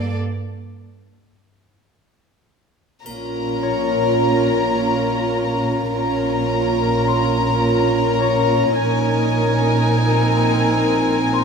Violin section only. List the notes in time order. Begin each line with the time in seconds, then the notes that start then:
Already playing: A4 D5
3.05 A#4 A#5
5.91 A#4 A#5
8.77 A#4 G#5